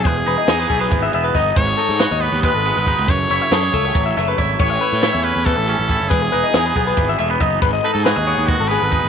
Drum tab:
HH |xxxxxxx|xxxxxxx|xxxxxxx|xxxxxxx|
SD |--oo--o|--o----|--o--o-|--o----|
BD |o--oo-o|o---o-o|o--oo-o|o---o-o|

HH |xxxxxxx|xxxxxxx|
SD |--o----|--o--o-|
BD |o--oo-o|o---o-o|